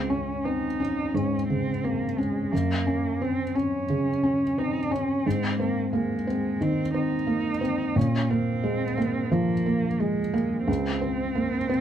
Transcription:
Already playing: felt piano C#2, cello C4
0.09 cello C#4, felt piano C#4
0.44 felt piano C4, cello D#4
0.80 felt piano C#4
1.14 felt piano G#2, cello C#4
1.49 felt piano C#3, cello C4
1.84 cello A#3, felt piano C4
2.18 cello G#3, felt piano C#4
2.52 felt piano F#2, cello A#3
2.87 felt piano C#4
3.22 felt piano C4, cello C4
3.55 felt piano C#4, cello C#4
3.90 felt piano C#3
4.23 felt piano C#4
4.58 felt piano C4, cello D#4
4.91 felt piano C#4, cello C#4
5.26 felt piano G#2, cello C4
5.60 cello A#3, felt piano C4
5.93 cello G#3, felt piano A#3
6.27 felt piano C4
6.61 felt piano D#3, cello C4
6.94 felt piano C4, cello D#4
7.27 felt piano A#3
7.61 felt piano C4
7.96 felt piano A#2, cello C#4
8.30 felt piano A#3, cello C4
8.64 felt piano G#3
8.97 felt piano A#3
9.32 felt piano F3, cello A#3
9.66 felt piano A#3
10.00 felt piano G#3, cello G#3
10.34 felt piano A#3
10.67 felt piano C#2, cello C4
11.01 felt piano C4
11.35 felt piano A#3
11.69 felt piano C4

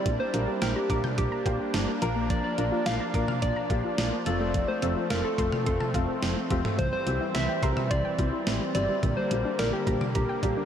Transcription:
Already playing: analog synth pad G3, soft synth lead D5
0.06 fm bass A#1, synth arpeggio sound G3, analog synth pad A#3 D4, kick, closed hi-hat
0.20 synth arpeggio sound A#3, soft synth lead C5
0.34 fm bass A#1, grand piano A#3 D4 G4 A#4, synth arpeggio sound D4, closed hi-hat
0.48 synth arpeggio sound G4
0.62 fm bass A#1, soft synth lead A#4, synth arpeggio sound G5, snare, closed hi-hat
0.76 soft synth lead G4, synth arpeggio sound A#5
0.90 fm bass A#1, grand piano A#3 D4 G4 A#4, synth arpeggio sound D6, kick, closed hi-hat
1.04 synth arpeggio sound G6, mid tom
1.18 fm bass A#1, soft synth lead G4, synth arpeggio sound D6, kick, closed hi-hat
1.32 synth arpeggio sound A#5
1.46 fm bass A#1, grand piano A#3 D4 G4 C5, synth arpeggio sound G5, kick, closed hi-hat
1.60 synth arpeggio sound G4
1.74 fm bass G1, synth arpeggio sound D4, snare, closed hi-hat
1.88 synth arpeggio sound A#3
2.02 fm bass A#1, synth arpeggio sound F3, analog synth pad F3, grand piano A#3 D4 F4 A#4, closed hi-hat
2.16 synth arpeggio sound A#3
2.30 synth arpeggio sound F3, soft synth lead D5, kick, closed hi-hat
2.44 synth arpeggio sound A#3, soft synth lead D5
2.58 fm bass A#1, grand piano A#3 D4 F4 A#4, synth arpeggio sound D4, closed hi-hat
2.72 synth arpeggio sound F4
2.86 fm bass A#1, synth arpeggio sound F5, soft synth lead F5, snare, closed hi-hat
3.00 synth arpeggio sound A#5
3.14 fm bass A#1, grand piano A#3 D4 F4 A#4, synth arpeggio sound D6, kick, closed hi-hat
3.28 synth arpeggio sound F6, mid tom
3.42 fm bass A#1, soft synth lead D5, synth arpeggio sound D6, kick, closed hi-hat
3.56 synth arpeggio sound A#5
3.70 fm bass A#1, grand piano A#3 D4 F4 G4, synth arpeggio sound F5, kick, closed hi-hat
3.84 synth arpeggio sound F4
3.98 fm bass A#1, synth arpeggio sound D4, snare, closed hi-hat
4.12 synth arpeggio sound A#3
4.26 fm bass F1, synth arpeggio sound F3, grand piano A3 C4 F4 A4, analog synth pad A3 C4, soft synth lead D5, closed hi-hat
4.40 synth arpeggio sound A3
4.54 synth arpeggio sound F3, kick, closed hi-hat
4.68 synth arpeggio sound A3, soft synth lead C5
4.82 fm bass F1, grand piano A3 C4 F4 A4, synth arpeggio sound C4, closed hi-hat
4.96 synth arpeggio sound F4
5.10 fm bass F1, soft synth lead A#4, synth arpeggio sound F5, snare, closed hi-hat
5.24 soft synth lead A4, synth arpeggio sound A5
5.38 fm bass F1, grand piano A3 C4 F4 A4, synth arpeggio sound C6, kick, closed hi-hat
5.52 synth arpeggio sound F6, mid tom
5.66 fm bass F1, soft synth lead A4, synth arpeggio sound C6, kick, closed hi-hat
5.80 synth arpeggio sound A5, mid tom
5.94 fm bass F1, grand piano A3 C4 F4 A4, synth arpeggio sound F5, kick, closed hi-hat
6.09 synth arpeggio sound F4
6.23 fm bass F1, synth arpeggio sound C4, snare, closed hi-hat
6.37 synth arpeggio sound A3
6.50 fm bass E1, synth arpeggio sound F3, grand piano A3 C4 F4 G4, kick, closed hi-hat
6.65 grand piano A3 C4 F4 A4, synth arpeggio sound A3, mid tom
6.79 fm bass C2, synth arpeggio sound E3, analog synth pad E3 G3, soft synth lead C5, kick, closed hi-hat
6.93 synth arpeggio sound G3, soft synth lead C5
7.07 fm bass C2, grand piano G3 C4 E4 G4, synth arpeggio sound C4, closed hi-hat
7.21 synth arpeggio sound E4
7.35 fm bass C2, soft synth lead E5, synth arpeggio sound E5, snare, closed hi-hat
7.49 synth arpeggio sound G5
7.63 fm bass C2, grand piano G3 C4 E4 A#4, synth arpeggio sound C6, kick, closed hi-hat
7.77 synth arpeggio sound E6, mid tom
7.91 fm bass C2, soft synth lead D5, synth arpeggio sound C6, kick, closed hi-hat
8.05 synth arpeggio sound G5
8.19 fm bass C2, grand piano G3 C4 E4 G4, synth arpeggio sound E5, kick, closed hi-hat
8.33 synth arpeggio sound E4
8.47 fm bass A1, synth arpeggio sound C4, snare, closed hi-hat
8.61 synth arpeggio sound G3
8.75 fm bass G1, synth arpeggio sound E3, grand piano G3 C4 E4 G4, soft synth lead D5, closed hi-hat
8.89 synth arpeggio sound G3, grand piano G3 C4 E4 G4
9.03 fm bass A#1, synth arpeggio sound D3, analog synth pad D3 A#3, kick, closed hi-hat
9.17 synth arpeggio sound G3, soft synth lead C5
9.31 fm bass A#1, grand piano G3 A#3 D4 G4, synth arpeggio sound A#3, closed hi-hat
9.45 synth arpeggio sound D4
9.59 fm bass A#1, soft synth lead A#4, synth arpeggio sound D5, snare, closed hi-hat
9.73 soft synth lead G4, synth arpeggio sound G5
9.87 fm bass A#1, grand piano G3 A#3 D4 G4, synth arpeggio sound A#5, kick, closed hi-hat
10.01 synth arpeggio sound D6, mid tom
10.15 fm bass A#1, soft synth lead G4, synth arpeggio sound A#5, kick, closed hi-hat
10.29 synth arpeggio sound G5
10.43 fm bass A#1, grand piano G3 A#3 D4 G4, synth arpeggio sound D5, kick, closed hi-hat
10.57 synth arpeggio sound D4

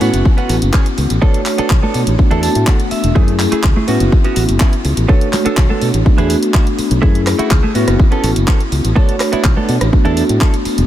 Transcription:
0.00 fingered electric bass A2, tine electric piano B3 C#4 E4 F#4, clean electric guitar B3 C#4 F#4, open hi-hat, tambourine
0.13 fingered electric bass F#1, closed hi-hat, tambourine
0.25 kick, tambourine
0.37 clean electric guitar B3 C#4 F#4, closed hi-hat, tambourine
0.49 fingered electric bass A1, open hi-hat, tambourine
0.62 fingered electric bass F#1, closed hi-hat, tambourine
0.73 clean electric guitar B3 C#4 G#4, kick, clap, tambourine
0.86 closed hi-hat, tambourine
0.97 fingered electric bass C#2, muted clean electric guitar stroke, open hi-hat, tambourine
1.10 fingered electric bass A1, closed hi-hat, tambourine
1.21 tine electric piano A3 D4 F#4 C#5, clean electric guitar B3 D4 A4, kick, tambourine
1.34 closed hi-hat
1.46 clap, open hi-hat, tambourine
1.58 clean electric guitar B3 D4 A4, muted fingered electric bass stroke, closed hi-hat, tambourine
1.70 fingered electric bass B1, kick, clap
1.82 clean electric guitar B3 D4 A4, high conga
1.94 fingered electric bass B2, open hi-hat, tambourine
2.07 fingered electric bass A1, closed hi-hat, tambourine
2.18 tine electric piano B3 D4 F#4, muted clean electric guitar stroke, kick, tambourine
2.31 fingered electric bass E2, clean electric guitar D4 E4 A4, closed hi-hat, tambourine
2.43 clean electric guitar A5, open hi-hat, tambourine
2.55 fingered electric bass A2, closed hi-hat, tambourine
2.67 clean electric guitar D4 E4 A4 F#5, kick, clap, tambourine
2.79 closed hi-hat, tambourine
2.91 clean electric guitar E5, muted clean electric guitar stroke, muted fingered electric bass stroke, open hi-hat, tambourine
3.03 fingered electric bass E1, closed hi-hat, tambourine
3.15 fingered electric bass F#2, tine electric piano A3 C#4 E4 G#4, clean electric guitar A3 E4 G#4, kick, tambourine
3.28 closed hi-hat
3.39 clap, open hi-hat, tambourine
3.51 clean electric guitar A3 E4 G#4, muted fingered electric bass stroke, closed hi-hat, tambourine
3.63 fingered electric bass C#2, kick, clap
3.76 clean electric guitar A3 E4 G#4, high conga
3.87 fingered electric bass A2, tine electric piano B3 C#4 E4 F#4, clean electric guitar B3 C#4 F#4, open hi-hat, tambourine
4.00 fingered electric bass F#1, closed hi-hat, tambourine
4.12 kick, tambourine
4.24 clean electric guitar B3 C#4 F#4, closed hi-hat, tambourine
4.36 fingered electric bass A1, open hi-hat, tambourine
4.49 fingered electric bass F#1, closed hi-hat, tambourine
4.60 clean electric guitar B3 C#4 E4, kick, clap, tambourine
4.73 closed hi-hat, tambourine
4.84 fingered electric bass C#2, muted clean electric guitar stroke, open hi-hat, tambourine
4.97 fingered electric bass A1, closed hi-hat, tambourine
5.08 tine electric piano A3 D4 F#4 C#5, clean electric guitar B3 D4 A4, kick, tambourine
5.21 closed hi-hat
5.33 clap, open hi-hat, tambourine, high conga
5.45 clean electric guitar B3 D4 A4, muted fingered electric bass stroke, closed hi-hat, tambourine
5.57 fingered electric bass B1, kick, clap, tambourine
5.69 clean electric guitar B3 D4 A4, high conga
5.82 fingered electric bass B2, open hi-hat, tambourine
5.94 fingered electric bass A1, closed hi-hat, tambourine
6.05 tine electric piano A3 B3 D4 F#4, muted clean electric guitar stroke, kick, tambourine
6.18 fingered electric bass E2, clean electric guitar D4 E4 G#4, closed hi-hat, tambourine
6.30 open hi-hat, tambourine
6.43 closed hi-hat, tambourine
6.54 clean electric guitar D4 E4 F#4, kick, clap, tambourine
6.67 closed hi-hat, tambourine
6.78 muted clean electric guitar stroke, muted fingered electric bass stroke, open hi-hat, tambourine
6.91 fingered electric bass B1, closed hi-hat, tambourine
7.02 fingered electric bass F#2, clean electric guitar A3 E4 G#4, tine electric piano A3 C#4 E4 G#4, kick
7.15 closed hi-hat
7.27 cross-stick, clap, open hi-hat, tambourine
7.38 clean electric guitar A3 E4 F#4, muted fingered electric bass stroke, closed hi-hat, tambourine
7.51 fingered electric bass C#2, kick, clap
7.63 clean electric guitar A3 E4 G#4, high conga
7.74 fingered electric bass A2, tine electric piano B3 C#4 E4 F#4, clean electric guitar B3 C#4 F#4, open hi-hat, tambourine
7.88 fingered electric bass F#1, cross-stick, closed hi-hat, tambourine
8.00 kick, tambourine
8.11 clean electric guitar B3 C#4 A4, closed hi-hat, tambourine
8.24 fingered electric bass A1, open hi-hat, tambourine
8.36 fingered electric bass F#1, closed hi-hat, tambourine
8.47 clean electric guitar B3 C#4 A4, kick, clap
8.60 closed hi-hat, tambourine
8.72 fingered electric bass C#2, muted clean electric guitar stroke, open hi-hat, tambourine
8.84 fingered electric bass A1, closed hi-hat, tambourine
8.95 tine electric piano A3 D4 F#4 C#5, clean electric guitar B3 D4 A4, kick, tambourine
9.09 closed hi-hat
9.20 cross-stick, clap, open hi-hat, tambourine
9.32 clean electric guitar B3 D4 E4, muted fingered electric bass stroke, closed hi-hat, tambourine
9.44 fingered electric bass B1, kick, clap
9.56 clean electric guitar B3 D4 A4, high conga
9.68 fingered electric bass B2, open hi-hat, tambourine
9.81 fingered electric bass A1, cross-stick, closed hi-hat, tambourine
9.92 tine electric piano A3 B3 D4 F#4, muted clean electric guitar stroke, kick, tambourine
10.05 fingered electric bass E2, clean electric guitar D4 E4 A4, closed hi-hat, tambourine
10.17 open hi-hat, tambourine
10.29 fingered electric bass A2, closed hi-hat, tambourine
10.41 clean electric guitar D4 E4 A4, kick, clap
10.54 closed hi-hat, tambourine
10.65 muted clean electric guitar stroke, muted fingered electric bass stroke, open hi-hat, tambourine
10.78 fingered electric bass E1, closed hi-hat, tambourine

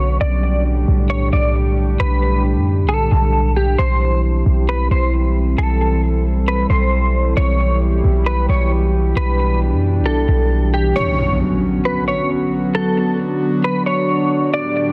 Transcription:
Already playing: 808-style bass B1, ambient pad D3 F#3 B3 C#4 F#4, clean electric guitar C#5, downlifter
0.21 808-style bass B1, ambient pad A2 D3 G3 D4 G4, clean electric guitar D5
0.88 808-style bass B1
1.10 clean electric guitar C#5
1.33 808-style bass B1, clean electric guitar D5
2.00 808-style bass B1, clean electric guitar B4
2.56 808-style bass F#2
2.84 808-style bass B1
2.89 clean electric guitar A4
3.12 808-style bass B1
3.56 clean electric guitar G4
3.78 808-style bass B1, ambient pad E3 G3 C4 E4 G4, clean electric guitar C5
4.46 808-style bass B1
4.69 clean electric guitar B4
4.91 808-style bass B1, clean electric guitar C5
5.58 808-style bass B1, ambient pad A4, clean electric guitar A4
6.48 clean electric guitar B4
6.70 808-style bass B1, clean electric guitar C5
7.37 808-style bass B1, ambient pad B2 E3 E4 G4, clean electric guitar C#5
8.04 808-style bass B1
8.26 clean electric guitar B4
8.49 808-style bass B1, clean electric guitar C#5
9.16 808-style bass B1, ambient pad D4, clean electric guitar B4
9.72 808-style bass F#2
10.00 808-style bass B1
10.06 clean electric guitar A4
10.28 808-style bass B1
10.74 clean electric guitar G4
10.96 ambient pad D3 F#3 B3 C#4 F#4, clean electric guitar C#5, impact
11.85 clean electric guitar B4
12.08 clean electric guitar C#5
12.75 ambient pad D4, clean electric guitar A4
13.64 clean electric guitar B4
13.86 clean electric guitar C#5
14.54 ambient pad A2 G3 G4, clean electric guitar D5

